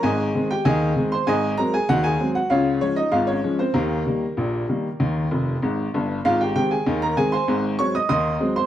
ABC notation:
X:1
M:2/4
L:1/16
Q:1/4=97
K:Ab
V:1 name="Upright piano"
[Aea]3 [Gg] [Aea]3 [cc'] | [Aea]2 [Bb] [Aa] [_G_g] [Aa]2 [Gg] | [Fdf]2 [Dd] [Ee] [Ff] [Dd]2 [Cc] | [B,GB]8- |
[B,GB]4 z4 | [Ff] [Gg] [Gg] [Aa]2 [Bb] [Aa] [cac']- | [cac']2 [dd'] [ee'] [ec'e']3 [cc'] |]
V:2 name="Upright piano" clef=bass
[A,,,A,,]2 [E,A,C]2 [E,,E,]2 [E,A,C]2 | [A,,,A,,]2 [_G,A,C]2 [E,,E,]2 [G,A,C]2 | [D,,D,]2 [F,A,]2 [A,,,A,,]2 [F,A,D]2 | [E,,E,]2 [E,G,B,]2 [B,,,B,,]2 [E,G,B,]2 |
[E,,E,]2 [F,,,F,,]2 [A,,,A,,]2 [G,,,G,,]2 | [A,,,A,,]2 [E,A,C]2 [E,,E,]2 [E,A,C]2 | [A,,,A,,]2 [_G,A,C]2 [E,,E,]2 [G,A,C]2 |]